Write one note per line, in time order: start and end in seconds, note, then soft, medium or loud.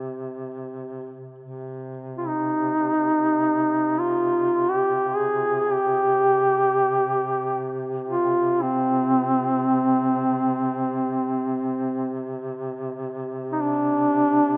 0.00 1.21 C3 soft
1.38 14.57 C3 soft
2.18 2.29 F4 soft
2.28 4.00 D#4 medium
3.99 4.71 F4 medium
4.70 5.18 G4 medium
5.17 5.75 G#4 medium
5.74 7.74 G4 medium
8.08 8.64 F4 medium
8.62 12.20 C4 medium
13.52 13.63 D#4 medium
13.61 14.57 D4 medium